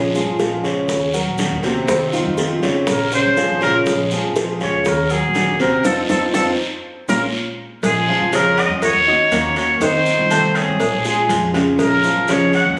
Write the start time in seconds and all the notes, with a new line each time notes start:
Already playing: A#1 F3 G#3 C#4 F4
0.14 F3 G#3 C#4 F4 G#4, maracas
0.26 A#1
0.39 F3 G#3 C#4 F4 G#4, high bongo, short guiro, maracas
0.63 C#2 C#3 C#4 C#5, high bongo, short guiro, maracas
0.88 D#2, muted steel-string acoustic guitar stroke, high bongo, long guiro, maracas
1.13 F#3 F#4 A#4, maracas
1.26 A#1
1.38 D#3 A#3 C#4 F#4, high bongo, low bongo, short guiro, maracas
1.51 D#2
1.63 D#2 C3 A#3 C4 C#4 F#4 C5, high bongo, short guiro, maracas
1.87 F2 C3 D#3 A3 C4 F4 C5, high bongo, long guiro, maracas
2.13 D#3 A3 C4 D#4 F4, maracas
2.25 F2
2.38 D#3 A3 C4 F4, high bongo, short guiro, maracas
2.62 F2 C#3 C#5, high bongo, short guiro, maracas
2.87 A#1, muted steel-string acoustic guitar stroke, high bongo, long guiro, maracas
2.91 A#4
3.12 C#3 C#4 C5 C#5, maracas
3.25 F2
3.36 F3 G#3 C#4 F4 G#4, high bongo, low bongo, short guiro, maracas
3.49 A#1
3.61 A#1 C#3 G#3 C#4 F4 A#4 C#5, high bongo, short guiro, maracas
3.86 A#1 F3 G#3 C#4 F4, high bongo, long guiro, maracas
4.11 F3 G#3 C#4 F4 G#4, maracas
4.24 A#1
4.36 F3 G#3 C#4 F4, high bongo, short guiro, maracas
4.60 C#2 C#3 C#4 C#5, high bongo, short guiro, maracas
4.85 D#2 A#4, muted steel-string acoustic guitar stroke, high bongo, long guiro, maracas
5.10 F#3 F#4 G#4 A#4, maracas
5.23 A#1
5.35 D#3 A#3 C#4 F#4, high bongo, low bongo, short guiro, maracas
5.48 D#2
5.60 D#2 C3 A#3 C4 C#4 F#4 A#4 C5, high bongo, short guiro, maracas
5.84 F2 C4 D#4 F4 A4, low bongo, long guiro, maracas
6.09 F2 C4 D#4 F4 A4, low bongo, long guiro, maracas
6.34 F2 C4 D#4 F4 A4, low bongo, long guiro, maracas
7.08 A#1 G#3 A#3 C#4 F4 A#4, low bongo, long guiro, maracas
7.83 A#1 F3 G#3 C#4 F4 G#4, cowbell, long guiro, maracas
8.08 F3 G#3 C#4 F4 F5
8.20 F2
8.32 C#3 F3 G#3 C#4 F4 A#4 C#5, cowbell, short guiro, maracas
8.57 D#5 F#5, short guiro, maracas
8.69 F2
8.82 D#2 C#5, muted steel-string acoustic guitar stroke, cowbell, long guiro, maracas
8.94 D#2
9.07 A#3 C#4 D#4 F#4 D#5 D#6
9.31 D#2 D#3 A#3 C#4 F#4 A#4 A#5, cowbell, short guiro, maracas
9.56 A#3 C#4 F#4 C#5, cowbell, short guiro, maracas
9.80 F2 C3 D#3 A3 C4 D#4 F4 C5 D#5, cowbell, long guiro, maracas
10.06 A3 C4 F4, maracas
10.18 C2
10.30 C3 D#3 A3 C4 F4 A4 A5, cowbell, short guiro, maracas
10.55 G#4 C#5, cowbell, short guiro, maracas
10.68 C2
10.80 A#1, muted steel-string acoustic guitar stroke, cowbell, long guiro, maracas
10.92 A#1
11.04 G#3 C#4 F4 G#4 G#5, maracas
11.29 F2 F3 G#3 C#4 F4, cowbell, short guiro, maracas
11.54 C#3 G#3 C#4 F4 C#5, cowbell, short guiro, maracas
11.79 A#1 F3 G#3 C#4 F4 A#4, cowbell, long guiro, maracas
12.04 F3 G#3 C#4 F4 F5, maracas
12.16 F2
12.28 C#3 F3 G#3 C#4 F4 C#5, cowbell, short guiro, maracas
12.53 F#5, short guiro, maracas
12.65 D2